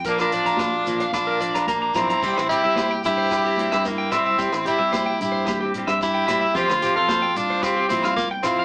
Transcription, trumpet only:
X:1
M:4/4
L:1/16
Q:1/4=111
K:Cmix
V:1 name="Trumpet"
D F6- F F4 D2 E2- | E2 G4 G6 E2 E2- | E2 G4 G4 z2 G4 | c3 A3 F2 F2 E2 F2 E2 |]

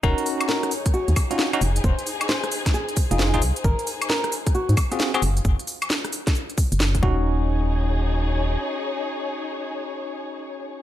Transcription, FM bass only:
X:1
M:4/4
L:1/16
Q:"Swing 16ths" 1/4=133
K:Ebdor
V:1 name="FM bass" clef=bass
E,,, z8 E,, z4 F,,, z | F,,, z8 z2 F,,,3 C,, z | A,,, z8 A,, z4 G,,, z | G,,, z8 z2 G,,,3 E,,,2- |
E,,,12 z4 | z16 |]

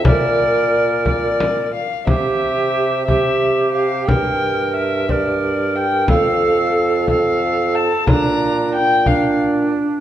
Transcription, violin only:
X:1
M:6/8
L:1/8
Q:3/8=60
K:Cmix
V:1 name="Violin"
d3 d2 f | e3 e2 f | g2 e d2 g | f3 f2 a |
b2 g f z2 |]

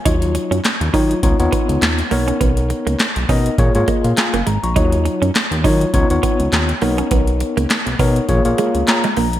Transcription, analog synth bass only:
X:1
M:4/4
L:1/16
Q:"Swing 16ths" 1/4=102
K:Ebm
V:1 name="Analog synth bass" clef=bass
E,,3 G,, z E,, E,2 D,, E,, z D,, E,,2 =B,,,2 | =B,,,3 ^C,, z B,,, =B,,2 _B,, A,, z B,, z G,,, A,,, _B,,, | E,,3 G,, z E,, E,2 D,, E,, z D,, E,,2 =B,,,2 | =B,,,3 ^C,, z B,,, =B,,2 _B,,, B,,, z D,, z2 B,,,2 |]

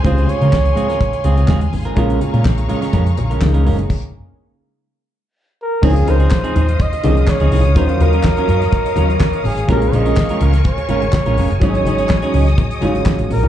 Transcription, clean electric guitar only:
X:1
M:4/4
L:1/16
Q:1/4=124
K:Db
V:1 name="Clean electric guitar"
[A,CFA]2 z [A,CFB] z2 [A,CFA] [A,CFB] z2 [A,CFA] [A,CFA] [A,CFA] z2 [A,CFB] | [A,DFB]2 z [A,DFB] z2 [A,DFB] [A,DFB] [A,DFB] z2 [A,DFB] z [A,DFB] [A,DFB] z | z16 | [F,CEA] z [F,CEB] [F,CEA] z [F,CEA] [F,CEA] z3 [F,CEA]2 z [F,CEA] [F,CEA] z |
[G,DFB] z [G,DFB] [G,DFB] z [G,DFB] [G,DFB] z3 [G,DFB] z4 z | [A,DFB] z [A,DFc] [A,DFB] z [A,DFB] [A,DFB] z3 [A,DFB] z2 [A,DFB] [A,DFB] z | [G,DEA] z [G,DEA] [G,DEA] z [G,DEA] [G,DEA] z3 [G,DEA] z4 z |]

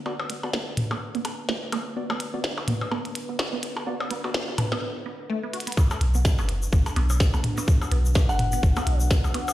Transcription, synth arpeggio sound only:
X:1
M:4/4
L:1/16
Q:"Swing 16ths" 1/4=126
K:Bm
V:1 name="Synth arpeggio sound"
z2 B, z B, z2 B, z B, z2 B, z B, z | z B, z B, z2 B, z B, z2 B, z B, z2 | B, z B, z2 B, z B, z2 B, z A, B, F B, | B, z2 B, z B, z2 B, z B, z2 B, z B, |
z2 B, z B, z2 B, z B, z2 B, z B, z |]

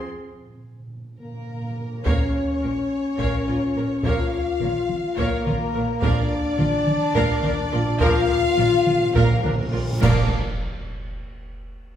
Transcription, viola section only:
X:1
M:7/8
L:1/8
Q:1/4=105
K:Cphr
V:1 name="Viola section"
z6 z | [Bd] z B z [Bd] [FB] B | [Bd] z B z [Bd] [FB] B | B z [FB] z B [=DB] [FB] |
B z [FB] z B [=DB] [FB] | B z6 |]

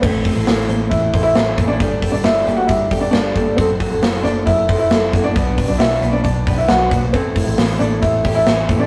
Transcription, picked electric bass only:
X:1
M:4/4
L:1/16
Q:1/4=135
K:Ador
V:1 name="Picked electric bass" clef=bass
A,,,2 z A,,, A,,,2 A,,,2 A,,,2 A,,,2 A,,,2 A,,,2 | G,,,2 z G,,, G,,,2 G,,,2 G,,,2 G,,,2 G,,,2 G,,,2 | F,,,2 z F,,, F,,,2 F,,,2 F,,,2 F,,,2 F,,,2 F,,,2 | B,,,2 z B,,, B,,,2 B,,,2 B,,,2 B,,,2 B,,,2 B,,,2 |
A,,,2 z A,,, A,,,2 A,,,2 A,,,2 A,,,2 A,,,2 A,,,2 |]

